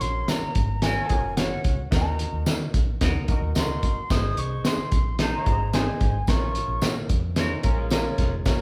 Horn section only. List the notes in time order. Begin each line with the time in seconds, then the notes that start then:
0.83 F#3 C#4 A#4
3.01 F#3 D#4 A#4
5.19 G#3 D#4 C5
7.36 F3 C#4 A#4